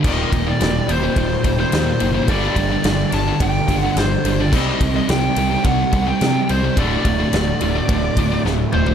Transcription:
0.04 D#1 D#2 A#2 D#3 G3 G4 D#5, kick, crash
0.32 D#1 D#2 A#2, kick, ride
0.47 D#2 A#2 D5
0.60 D#1 D#2 A#2, snare, ride
0.88 D#1 D#2 A#2 C5, ride
1.03 D#2 A#2
1.16 D#1 D#2 A#2, kick, ride
1.44 D#1 D#2 A#2, kick, ride
1.59 D#2 A#2 C5
1.72 D#2 A#2, snare, ride
2.00 F#1 D#2 A#2, ride
2.14 D#2 A#2
2.28 G1 G2 D3 G3 A#3 D4 G4 D5, kick, ride
2.56 G1 G2 D3, kick, ride
2.72 G2 D3
2.84 G1 G2 D3, snare, ride
3.12 G1 G2 D3 A5, ride
3.28 G2 D3
3.40 G1 G2 D3 G5, kick, ride
3.68 G1 G2 D3, kick, ride
3.80 F#5
3.85 G2 D3
3.96 G1 G2 D3 C5, snare, ride
4.25 G1 G2 D3, ride
4.40 G2 D3 D5
4.53 C2 C3 G3 C4 D#4 G4 C5 D#5, kick, crash
4.80 C2 C3 G3, kick, ride
4.96 C3 G3 D#5
5.09 C2 C3 G3 G5, snare, ride
5.36 C2 C3 G3, ride
5.51 C3 G3
5.64 C2 C3 G3 F#5, kick, ride
5.93 C2 C3 G3, kick, ride
6.07 C3 G3 G5
6.21 C3 G3, snare, ride
6.49 C2 C3 G3 C5, ride
6.64 C3 G3
6.77 D1 D2 A2 D3 A3 F#4 D5, kick, ride
7.05 D1 D2 A2, kick, ride
7.20 D2 A2
7.33 D1 D2 A2, snare, ride
7.61 D1 D2 A2, ride
7.76 D2 A2
7.89 D1 D2 A2, kick, ride
8.17 D1 D2 A2, kick, ride
8.32 D2 A2
8.45 D1 D2 A2, snare
8.73 D1 D2 A2 C5, mid tom
8.87 D2 A2, floor tom

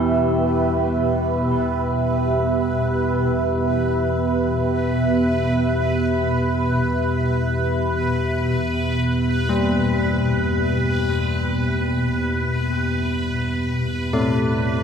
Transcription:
Already playing: E2 B2 B3 E4 G4 B4 E5
9.49 G3
14.13 A3

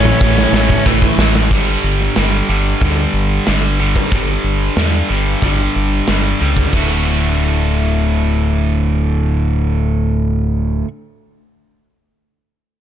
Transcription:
Already playing: A1 A2 E3 A3 C#4
0.05 mid tom
0.21 A1 A2 E3 A3, kick
0.38 snare
0.52 A1 A2 E3 A3, snare
0.70 kick
0.86 A1 A2 E3 A3, kick
1.02 kick
1.18 A1 A2 E3 A3, snare
1.35 snare
1.51 G1 G2 D3 G3, kick, crash
1.84 G1, open hi-hat
2.01 snare
2.16 G1 G2 D3 G3, snare, open hi-hat
2.49 G1 G2 D3 G3, open hi-hat
2.81 D2 G2 D3 G3, kick, open hi-hat
3.13 G1, open hi-hat
3.46 G1 G2 D3 G3, snare, open hi-hat
3.79 G2 D3 G3, open hi-hat
3.96 kick
4.11 G1 G2 D3 G3, kick, open hi-hat
4.44 G1, open hi-hat
4.76 E2 G2 D3 G3, snare, open hi-hat
5.09 G1 G2 D3 G3, open hi-hat
5.41 G1 G2 D3 G3, kick, open hi-hat
5.74 G1, open hi-hat
6.07 G1 G2 D3 G3, snare, open hi-hat
6.40 C#2 G2 D3 G3, open hi-hat
6.57 kick
6.72 D1 D2 A2 D3 A3 F#4, kick, crash

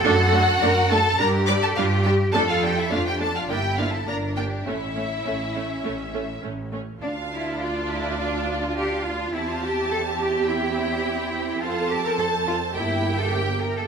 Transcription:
Already playing: A4
0.04 F#2 A3 D4 F#4 F#5
0.33 A3 D4
0.62 F#2 A3 D4 A#4
0.91 A3 D4 A4 A5
1.19 G2 G3 D4 G4 A#4 A#5
1.47 G3 D4 D5 D6
1.63 A4 A5
1.76 G2 G3 D4 F4 F5
2.04 G3 D4 G4 G5
2.33 F2 A3 D4 A4 A5
2.48 F4 F5
2.62 A3 D4 G4 G5
2.78 E4 E5
2.90 F2 A3 D4 F4 F5
3.06 G4 G5
3.20 A3 D4 A4 A5
3.35 F4 F5
3.48 G1 A#3 D4 E4 G4 G5
3.77 A#3 D4 F4 F5
3.92 A4 A5
4.07 G1 A#3 D4 A#4 A#5
4.37 A#3 D4 G4 G5
4.65 A1 A3 C#4 E4 E5
4.96 A3 C#4
5.26 A1 A3 C#4
5.55 A3 C#4
5.84 A1 A3 C#4
6.14 A3 C#4
6.43 A1 A3 C#4
6.73 A3 C#4
7.02 D2 D4 F4 F5 A5
7.32 E4
7.61 F4 D5
7.90 E4
8.19 D4
8.62 F4
8.76 G4 F5
9.05 F4
9.33 E2 C4 E4 G4 E5 A5
9.48 F4
9.63 G4
9.91 A4
10.19 G4
10.48 E4 G5
11.61 F2 F4 A4 C5 A5
11.89 G4
12.04 A#4
12.18 A4
12.47 F4
12.75 G1 A#3 E4 G4 E5 G5
13.19 A4
13.33 G4
13.62 A#4
13.76 A4

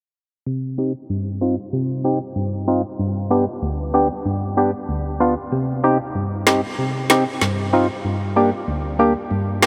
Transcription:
0.46 C3
0.78 C4 D#4 G4
1.10 G2
1.41 C4 D#4 F4
1.73 C3
2.04 C4 D#4 G4
2.36 G2
2.68 C4 D#4 F4
2.99 G2
3.30 B3 D4 G4
3.62 D2
3.94 B3 D4 G4
4.26 G2
4.57 B3 D4 G4
4.89 D2
5.20 B3 D4 F4
5.52 C3
5.84 C4 D#4 G4
6.15 G2
6.47 C4 D#4 G4, cross-stick, snare
6.79 C3
7.10 C4 D#4 G4, cross-stick, snare
7.41 G2, snare
7.73 C4 D#4 F4
8.05 G2
8.36 A#3 D4 G4
8.68 D2
8.99 A#3 D4 G4
9.31 G2
9.62 A#3 D4 G4, snare

